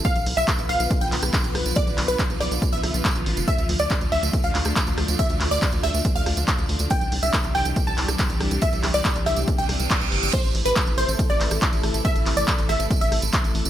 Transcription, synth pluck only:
\new Staff \with { instrumentName = "Synth pluck" } { \time 4/4 \key a \minor \tempo 4 = 140 f''8 r16 e''8 r16 f''8 r16 g''4. r16 | d''8 r16 b'8 r16 d''8 r16 e''4. r16 | e''8 r16 d''8 r16 e''8 r16 f''4. r16 | e''8 r16 d''8 r16 e''8 r16 f''4. r16 |
g''8 r16 e''8 r16 g''8 r16 a''4. r16 | e''8 r16 d''8 r16 e''8 r16 g''4. r16 | c''8 r16 b'8 r16 c''8 r16 d''4. r16 | e''8 r16 d''8 r16 e''8 r16 e''4. r16 | }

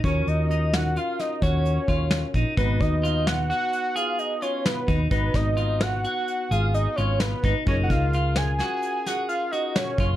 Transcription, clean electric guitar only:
\new Staff \with { instrumentName = "Clean electric guitar" } { \time 11/8 \key gis \dorian \tempo 4 = 130 cis'4 dis'4 eis'4 fis'4 eis'4 dis'8 | dis'4 eis'4 fis'4 gis'4 eis'4 dis'8 | dis'4 eis'4 fis'4 gis'4 eis'4 dis'8 | dis'4 eis'4 fis'4 gis'4 fis'4 eis'8 | }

